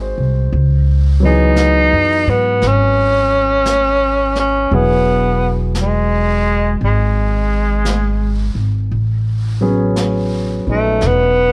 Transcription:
Already playing: G#1 G#3 C4 D#4 F#4 G#4
0.01 C5
0.18 C2
0.51 C#2, brush sweep
1.20 E3 F#3 B3
1.25 D#4 G#4
1.56 brush sweep, snare, hi-hat pedal
1.93 F#2
2.27 G#2 B3
2.62 G#1, brush sweep, snare
2.68 C#4
3.66 brush sweep, snare, hi-hat pedal
4.35 snare
4.40 C#4
4.70 E1 F#3 B3 E4 G#4, brush sweep
4.75 B3
5.75 brush sweep, snare, hi-hat pedal
5.81 G#3
6.79 G#1, brush sweep
6.85 G#3
7.85 brush sweep, snare, hi-hat pedal
8.55 G#1
8.90 A1, brush sweep
9.61 F#3 B3 C#4 G#4
9.96 brush sweep, snare, hi-hat pedal
10.66 A#1 B3 D#4
10.71 A3
11.01 E1, brush sweep, snare
11.06 B3

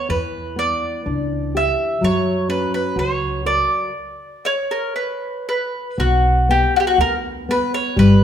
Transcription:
0.09 E2 E3 B4
0.56 B3 D5
1.06 C#2 D4
1.55 G4 E5
2.01 F#2 F#3 C#5
2.49 C#4 B4
2.74 B4
2.95 C#2 F#4 C#5
3.46 A#4 D5
4.45 C#5
4.71 A#4
4.96 B4
5.49 B4
5.98 B1 B3 F#4
6.49 B3 G4
6.76 F#4 G4
6.87 F#4
6.98 D2 B3 A#4
7.49 B3 B4
7.74 C#5
7.96 G1 G3 B4

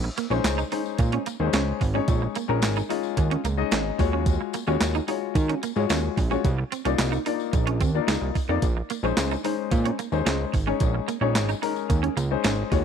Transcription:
0.04 muted clean electric guitar stroke
0.17 A#3, closed hi-hat, tambourine
0.30 A#1 G#3 C#4 D#4 C5, tambourine
0.44 C#2, muted clean electric guitar stroke, snare, clap, closed hi-hat, tambourine
0.58 D#4, tambourine
0.72 G#3 C#4 D#4 C5, open hi-hat
0.85 tambourine
0.98 A#2, muted clean electric guitar stroke, kick, closed hi-hat, tambourine
1.12 C#4, closed hi-hat
1.26 A#3, closed hi-hat, tambourine
1.40 D#2 G#3 C4 D#4 C5
1.47 C#4
1.53 C#2 C#4, snare, clap, closed hi-hat, tambourine
1.81 G#1, muted clean electric guitar stroke, kick, open hi-hat, tambourine
1.94 G#3 C#4 D#4 C#5
2.08 A#1, kick, closed hi-hat, tambourine
2.22 muted clean electric guitar stroke
2.35 A#3, closed hi-hat, tambourine
2.48 A#1 G#3 C#4 D#4 A#4
2.62 G#1, muted clean electric guitar stroke, snare, clap, closed hi-hat, tambourine
2.76 D#4, tambourine
2.89 G#3 C#4 D#4 F4, open hi-hat
3.03 tambourine
3.17 D#2, muted clean electric guitar stroke, kick, closed hi-hat, tambourine
3.31 C#4, closed hi-hat
3.44 C#2 A#3, closed hi-hat, tambourine
3.57 G#3 C#4 D#4 D#5
3.71 G#1 C#4, snare, clap, closed hi-hat, tambourine
3.98 D#2 G#3 F4 F#4 C#5, muted clean electric guitar stroke, kick, open hi-hat, tambourine
4.13 C#4
4.26 kick, closed hi-hat, tambourine
4.41 muted clean electric guitar stroke
4.53 A#3, closed hi-hat, tambourine
4.67 D#2 G#3 C#4 F4 F#4 C#5, tambourine
4.81 D#2, muted clean electric guitar stroke, snare, clap, closed hi-hat, tambourine
4.95 D#4, tambourine
5.08 G#3 D#4 F4 F#4 C#5, open hi-hat
5.35 D#3, muted clean electric guitar stroke, kick, closed hi-hat, tambourine
5.49 C#4, closed hi-hat
5.63 A#3, closed hi-hat, tambourine
5.76 G#2 G#3 F4 F#4 C#5, tambourine
5.89 D#2 C#4, snare, clap, closed hi-hat, tambourine
6.17 A#1, muted clean electric guitar stroke, kick, open hi-hat, tambourine
6.31 G#3 C#4 F4 F#4 C#5, tambourine
6.44 C2, kick, closed hi-hat, tambourine
6.58 muted clean electric guitar stroke
6.72 C4, closed hi-hat, tambourine
6.85 C2 A#3 C#4 D#4 F4 D5, closed hi-hat, tambourine
6.98 C2, muted clean electric guitar stroke, snare, clap, closed hi-hat, tambourine
7.12 D#4, tambourine
7.26 A#3 D4 D#4 F4 D5, open hi-hat
7.33 D#4
7.40 tambourine
7.53 A#1, muted clean electric guitar stroke, kick, closed hi-hat, tambourine
7.67 C#4, closed hi-hat
7.81 D#2 C4, kick, closed hi-hat, tambourine
7.95 A#3 D4 F4 D5
8.01 D#4
8.08 C#2 D#4, snare, clap, closed hi-hat, tambourine
8.21 C2
8.35 muted clean electric guitar stroke, kick, open hi-hat, tambourine
8.49 F2 A#3 D#4 F4 D5
8.62 A#1, kick, closed hi-hat, tambourine
8.77 muted clean electric guitar stroke
8.90 A#3, closed hi-hat, tambourine
9.03 A#1 G#3 C#4 D#4 C5, tambourine
9.17 C#2, muted clean electric guitar stroke, snare, clap, closed hi-hat, tambourine
9.31 D#4, tambourine
9.44 G#3 C#4 D#4 C5, open hi-hat
9.71 A#2, muted clean electric guitar stroke, kick, closed hi-hat, tambourine
9.85 C#4, closed hi-hat
9.99 A#3, closed hi-hat, tambourine
10.12 D#2 G#3 C#4 D#4 C5, tambourine
10.26 C#2 C#4, snare, clap, closed hi-hat, tambourine
10.54 G#1, muted clean electric guitar stroke, kick, open hi-hat, tambourine
10.67 G#3 C#4 D#4 C#5
10.80 A#1, kick, closed hi-hat, tambourine
10.94 muted clean electric guitar stroke
11.08 A#3, closed hi-hat, tambourine
11.21 A#1 G#3 C#4 D#4 C#5
11.35 G#1, muted clean electric guitar stroke, snare, clap, closed hi-hat, tambourine
11.49 D#4, tambourine
11.62 G#3 C#4 D#4 A#4, open hi-hat
11.76 tambourine
11.90 D#2, muted clean electric guitar stroke, kick, closed hi-hat, tambourine
12.03 C#4, closed hi-hat
12.17 C#2 A#3, closed hi-hat, tambourine
12.31 G#3 C#4 D#4 C5
12.44 G#1 C#4, snare, clap, closed hi-hat, tambourine
12.72 D#2 G#3 F4 F#4 C#5, muted clean electric guitar stroke, kick, open hi-hat, tambourine

